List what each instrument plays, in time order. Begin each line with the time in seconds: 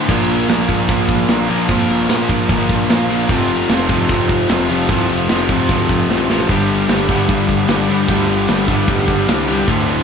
0.09 picked electric bass A#1, overdriven electric guitar A#2 F3 A#3, distorted electric guitar D4 F4 A#4, kick, crash
0.29 crash
0.49 picked electric bass A#1, overdriven electric guitar A#2 F3 A#3, snare, crash
0.69 picked electric bass A#1, overdriven electric guitar A#2 F3 A#3, kick, crash
0.89 picked electric bass A#1, overdriven electric guitar A#2 F3 A#3, kick, crash
1.09 kick, crash
1.28 picked electric bass A#1, overdriven electric guitar A#2 F3 A#3, snare, crash
1.48 picked electric bass A#1, overdriven electric guitar A#2 F3 A#3, distorted electric guitar D4 F4 A#4, crash
1.68 picked electric bass F2, overdriven electric guitar A#2 F3 A#3, distorted electric guitar D4 F4 A#4, kick, crash
1.89 picked electric bass A#1, crash
2.09 picked electric bass A#1, overdriven electric guitar A#2 F3 A#3, snare, crash
2.29 picked electric bass A#1, overdriven electric guitar A#2 F3 A#3, kick, crash
2.49 picked electric bass G1, overdriven electric guitar A#2 F3 A#3, kick, crash
2.69 picked electric bass A#1, kick, crash
2.90 picked electric bass A#1, overdriven electric guitar A#2 F3 A#3, snare, crash
3.09 overdriven electric guitar A#2 F3 A#3, distorted electric guitar D4 F4 A#4, crash
3.29 picked electric bass F1, overdriven electric guitar F2 C3 F3, distorted electric guitar A3 C4 F4, kick, crash
3.49 crash
3.69 picked electric bass F1, overdriven electric guitar F2 C3 F3, snare, crash
3.89 picked electric bass F1, overdriven electric guitar F2 C3 F3, kick, crash
4.09 picked electric bass F1, overdriven electric guitar F2 C3 F3, kick, crash
4.29 kick, crash
4.49 picked electric bass F1, overdriven electric guitar F2 C3 F3, snare, crash
4.68 picked electric bass F1, overdriven electric guitar F2 C3 F3, distorted electric guitar A3 C4 F4, crash
4.89 picked electric bass C2, overdriven electric guitar F2 C3 F3, distorted electric guitar A3 C4 F4, kick, crash
5.09 picked electric bass F1, crash
5.29 picked electric bass F1, overdriven electric guitar F2 C3 F3, snare, crash
5.49 picked electric bass F1, overdriven electric guitar F2 C3 F3, kick, crash
5.69 picked electric bass D1, overdriven electric guitar F2 C3 F3, kick, crash
5.89 picked electric bass F1, kick, crash
6.10 picked electric bass A1, overdriven electric guitar F2 C3 F3, snare
6.29 overdriven electric guitar F2 C3 F3, distorted electric guitar A3 C4 F4, snare
6.49 picked electric bass G1, overdriven electric guitar G2 D3 G3, distorted electric guitar B3 D4 G4, kick, crash
6.69 crash
6.89 picked electric bass G1, overdriven electric guitar G2 D3 G3, snare, crash
7.09 picked electric bass G1, overdriven electric guitar G2 D3 G3, kick, crash
7.29 picked electric bass G1, overdriven electric guitar G2 D3 G3, kick, crash
7.49 kick, crash
7.68 picked electric bass G1, overdriven electric guitar G2 D3 G3, snare, crash
7.88 picked electric bass G1, overdriven electric guitar G2 D3 G3, distorted electric guitar B3 D4 G4, crash
8.08 picked electric bass D2, overdriven electric guitar G2 D3 G3, distorted electric guitar B3 D4 G4, kick, crash
8.28 picked electric bass G1, crash
8.48 picked electric bass G1, overdriven electric guitar G2 D3 G3, snare, crash
8.68 picked electric bass G1, overdriven electric guitar G2 D3 G3, kick, crash
8.88 picked electric bass F1, overdriven electric guitar G2 D3 G3, kick, crash
9.08 picked electric bass G1, kick, crash
9.28 picked electric bass C2, overdriven electric guitar G2 D3 G3, snare, crash
9.48 overdriven electric guitar G2 D3 G3, distorted electric guitar B3 D4 G4, crash
9.68 picked electric bass D1, overdriven electric guitar D2 A2 D3, distorted electric guitar A3 F4, kick, crash
9.88 crash